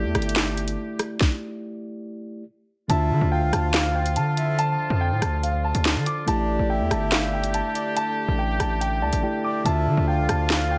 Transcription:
Already playing: woodwind section D3 A3 G4, tine electric piano A3 E4 G4 D5
0.04 808-style bass E2
0.15 808-style bass G1, cross-stick, closed hi-hat
0.22 closed hi-hat
0.29 closed hi-hat
0.36 snare, clap, closed hi-hat
0.57 closed hi-hat
0.68 closed hi-hat
0.99 cross-stick, closed hi-hat
1.21 kick, snare
2.88 808-style bass D2, tine electric piano D3 D4 F4, woodwind section D3 F3 F4, soft synth lead E5, grand piano A5, closed hi-hat
3.11 808-style bass D3
3.21 808-style bass D2
3.32 soft synth lead F5, grand piano G5
3.42 808-style bass C#2
3.53 808-style bass D2, grand piano A5, cross-stick, closed hi-hat
3.74 grand piano F5, snare, clap, closed hi-hat
3.95 grand piano G5
4.06 closed hi-hat
4.16 808-style bass D3, grand piano A5, closed hi-hat
4.37 soft synth lead E5, closed hi-hat
4.59 grand piano A5, closed hi-hat
4.90 808-style bass F2
5.01 grand piano G5
5.11 808-style bass A2
5.22 808-style bass D2, grand piano A5, cross-stick, closed hi-hat
5.43 grand piano F5, closed hi-hat
5.64 grand piano A5
5.75 808-style bass D2, closed hi-hat
5.85 snare, clap, closed hi-hat
5.96 808-style bass D3
6.06 grand piano D6, closed hi-hat
6.26 808-style bass A1, tine electric piano A3 E4 G4 D5, woodwind section A3 G4, soft synth lead D5, grand piano A5, closed hi-hat
6.59 808-style bass A1
6.70 soft synth lead E5, grand piano G5
6.80 808-style bass E2
6.91 808-style bass G1, grand piano A5, cross-stick, closed hi-hat
7.12 grand piano F5, snare, clap, closed hi-hat
7.33 grand piano G5
7.44 closed hi-hat
7.54 grand piano A5, closed hi-hat
7.75 soft synth lead D5, closed hi-hat
7.96 grand piano A5, closed hi-hat
8.28 808-style bass A1
8.39 grand piano G5
8.60 808-style bass A1, grand piano A5, cross-stick, closed hi-hat
8.81 grand piano G5, closed hi-hat
9.02 808-style bass C#2, tine electric piano D5, grand piano A5
9.13 808-style bass A1, closed hi-hat
9.23 tine electric piano A3 E4 G4 D5 G5
9.44 soft synth lead D5, grand piano D6
9.64 808-style bass D2, tine electric piano D3 D4 F4, woodwind section F3 F4, soft synth lead E5, grand piano A5, closed hi-hat
9.87 808-style bass D3
9.97 808-style bass D2
10.08 soft synth lead F5, grand piano G5
10.18 808-style bass C#2
10.29 808-style bass D2, grand piano A5, cross-stick, closed hi-hat
10.50 grand piano F5, snare, clap, closed hi-hat
10.71 grand piano G5

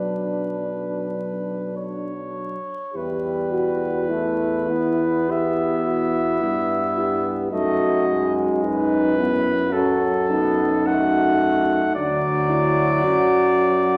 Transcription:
Already playing: tuba B1, euphonium F#3, trombone D4, french horn section D4, flugelhorn B4
1.77 flugelhorn C#5
2.94 tuba E2, trombone G3, french horn section E4, euphonium G4, flugelhorn B4
3.51 euphonium F#4, french horn section F#4
4.08 trombone A3, euphonium E4, french horn section E4
4.69 trombone B3, euphonium E4
5.28 euphonium G4, flugelhorn E5
5.86 euphonium F#4
6.40 tuba G2, euphonium E4
6.98 euphonium G4
7.50 tuba F#2, trombone A3, french horn section D#4, euphonium F#4, flugelhorn D#5
8.08 trombone G#3
8.62 french horn section D#4, euphonium D#4, flugelhorn B4
9.16 euphonium B3, french horn section E4
9.70 trombone F#3, euphonium C#4, french horn section F#4, flugelhorn A4
10.30 trombone B3, euphonium D#4
10.87 trombone A3, french horn section F#4, flugelhorn F#5
11.95 tuba D2, trombone F#3, euphonium D4, french horn section F#4, flugelhorn D5
12.49 euphonium E4
13.04 tuba F#2, euphonium F#4

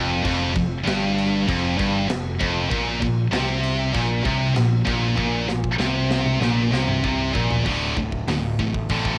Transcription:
Already playing: picked electric bass F1, distorted electric guitar F2
0.24 picked electric bass F1, distorted electric guitar F2, kick, crash
0.56 picked electric bass F1, distorted electric guitar F2, kick, crash
0.86 picked electric bass G1, distorted electric guitar G2, snare, crash
1.18 crash
1.48 picked electric bass F1, distorted electric guitar F2, kick, crash
1.77 picked electric bass G1, distorted electric guitar G2, kick, crash
2.08 picked electric bass F1, distorted electric guitar F2, snare, crash
2.39 picked electric bass F1, distorted electric guitar F2, kick, crash
2.70 picked electric bass A#1, distorted electric guitar A#2, kick, crash
3.00 picked electric bass A#1, distorted electric guitar A#2, kick, crash
3.33 picked electric bass C2, distorted electric guitar C3, snare, crash
3.63 crash
3.93 picked electric bass A#1, distorted electric guitar A#2, kick, crash
4.23 picked electric bass C2, distorted electric guitar C3, kick, crash
4.55 picked electric bass A#1, distorted electric guitar A#2, snare, crash
4.85 picked electric bass A#1, distorted electric guitar A#2, kick, crash
5.16 picked electric bass A#1, distorted electric guitar A#2, kick
5.48 picked electric bass A#1, distorted electric guitar A#2, snare
5.64 kick
5.79 picked electric bass C2, distorted electric guitar C3, snare
6.11 snare
6.26 mid tom
6.41 picked electric bass A#1, distorted electric guitar A#2, snare
6.72 picked electric bass C2, distorted electric guitar C3, snare
6.88 mid tom
7.04 picked electric bass C2, distorted electric guitar C3, kick
7.34 picked electric bass A#1, distorted electric guitar A#2, kick
7.51 floor tom
7.66 picked electric bass D1, distorted electric guitar D2 A2 D3, kick, crash
7.96 picked electric bass D1, distorted electric guitar D2 A2, kick
8.12 kick
8.27 picked electric bass D1, distorted electric guitar D2 A2, snare, open hi-hat
8.59 picked electric bass A1, distorted electric guitar D2 A2, kick
8.74 kick
8.89 picked electric bass A1, distorted electric guitar D2 A2 D3, kick, open hi-hat
9.05 kick

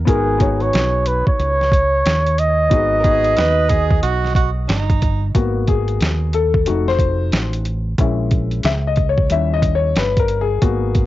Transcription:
0.05 fingered electric bass G#1, grand piano B3 D#4 F#4 A#4, flugelhorn G#4, kick, closed hi-hat
0.38 grand piano B3 D#4 F#4 C#5, kick, closed hi-hat
0.60 flugelhorn C#5, closed hi-hat
0.73 fingered electric bass B1, snare, closed hi-hat
1.06 flugelhorn B4, closed hi-hat
1.27 flugelhorn C#5, kick
1.39 fingered electric bass C#2, closed hi-hat
1.61 snare
1.72 kick, closed hi-hat
2.05 fingered electric bass D#2, snare, closed hi-hat
2.26 closed hi-hat
2.38 flugelhorn D#5, closed hi-hat
2.70 fingered electric bass G#1, grand piano B3 D#4 F#4 G#4, kick, closed hi-hat
2.99 grand piano B3, tenor saxophone G#4 A#4
3.03 grand piano D#4 F#4 B4, kick, closed hi-hat
3.24 closed hi-hat
3.36 fingered electric bass D#2, tenor saxophone B4, snare, closed hi-hat
3.69 tenor saxophone G#4, kick, closed hi-hat
3.91 kick
4.03 fingered electric bass B1, tenor saxophone F#4, closed hi-hat
4.25 snare
4.35 tenor saxophone F#4, kick, closed hi-hat
4.68 fingered electric bass G1, tenor saxophone D#4, snare, closed hi-hat
4.90 kick, closed hi-hat
5.02 kick, closed hi-hat
5.34 fingered electric bass G#1, grand piano A#3 B3 F#4, kick, closed hi-hat
5.67 grand piano G#4, kick, closed hi-hat
5.88 closed hi-hat
6.00 fingered electric bass D#2, snare, closed hi-hat
6.33 grand piano A4, closed hi-hat
6.54 kick
6.66 fingered electric bass F1, grand piano A3 D#4 F#4, closed hi-hat
6.88 grand piano C5, snare
6.99 kick, closed hi-hat
7.32 fingered electric bass A1, snare, closed hi-hat
7.53 closed hi-hat
7.65 closed hi-hat
7.98 fingered electric bass A#1, grand piano G#3 C#4 E4, kick, closed hi-hat
8.31 kick, closed hi-hat
8.51 closed hi-hat
8.63 fingered electric bass C#2, grand piano E5, snare, closed hi-hat
8.87 grand piano D#5
8.96 kick, closed hi-hat
9.09 grand piano C#5
9.18 kick
9.30 fingered electric bass D#2, grand piano G3 C#4 E4 E5, closed hi-hat
9.54 grand piano D#5
9.62 kick, closed hi-hat
9.75 grand piano C#5
9.95 fingered electric bass G1, grand piano B4, snare, closed hi-hat
10.17 grand piano A#4, kick, closed hi-hat
10.28 closed hi-hat
10.41 grand piano G#4
10.62 fingered electric bass G#1, grand piano A#3 B3 F#4, kick, closed hi-hat
10.95 kick, closed hi-hat

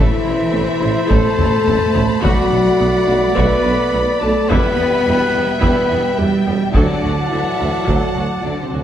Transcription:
Already playing: trombone section B2 A3, viola section A3 A4, french horn section E4, trumpet C5, violin section C5 B5
0.00 cello section E3, violin section E5
0.24 tuba A1, double bass section A1, viola section A3 E4
0.52 tuba A1, double bass section A1, viola section A3 C4
0.80 tuba A1, double bass section A1, viola section A3 E4
1.08 tuba A1, double bass section A1, viola section A3 A4, cello section A3, french horn section A4, violin section A5, taiko
1.38 tuba A1, double bass section A1, viola section A3 E4, taiko low-mid
1.67 tuba A1, double bass section A1, viola section A3 C4, taiko low-mid
1.94 tuba A1, double bass section A1, viola section A3 E4, taiko low
2.22 tuba B1, double bass section B1, cello section F#3, viola section A3 F#4, french horn section F#4, violin section D5 F#5, trumpet D5, taiko
2.50 tuba B1, double bass section B1, viola section A3 D4
2.79 tuba B1, double bass section B1, viola section A3 B3
3.06 tuba B1, double bass section B1, viola section A3 D4
3.36 tuba B1, double bass section B1, viola section A3 F#4, cello section B3, french horn section B4, violin section B5, taiko
3.64 tuba B1, double bass section B1, viola section A3 D4
3.93 double bass section B1, tuba B1, viola section A3 B3
4.21 tuba B1, double bass section B1, viola section A3 D4, cello section A3, french horn section A4, violin section A5
4.49 tuba E1, double bass section E2, trombone section B2 G3, viola section G3 E4, cello section B3, trumpet B4, french horn section B4, violin section E5 G5 B5, taiko
4.76 tuba E1, double bass section E2, viola section G3 B3
5.05 tuba E1, double bass section E2, viola section G3
5.33 tuba E1, double bass section E2, viola section G3 B3
5.60 tuba E1, double bass section E2, viola section G3 E4, cello section B3, french horn section B4, violin section B5, taiko
5.89 tuba E1, double bass section E2, viola section G3 B3
6.17 tuba E1, double bass section E2, cello section G3, viola section G3, french horn section G4, violin section G5
6.46 tuba E1, double bass section E2, viola section G3 B3
6.73 tuba D2, double bass section D2, trombone section A2 F#3, cello section D3, viola section F#3 A4, french horn section D4, violin section D5 F#5 A5, trumpet D5, taiko
7.02 tuba D2, double bass section D2, viola section F#3 F#4
7.28 tuba D2, cello section E3, viola section F#3 D4, french horn section E4
7.32 double bass section D2, violin section E5
7.59 tuba D2, double bass section D2, viola section F#3 F#4
7.85 tuba D2, double bass section D2, viola section F#3 A4, cello section F#3, french horn section F#4, violin section F#5, taiko
8.16 tuba D2, double bass section D2, viola section F#3 F#4
8.43 tuba D2, double bass section D2, cello section D3, viola section F#3 D4, french horn section D4, violin section D5
8.63 cello section C3, french horn section C4, violin section C5
8.73 double bass section D2, tuba D2, viola section F#3 F#4

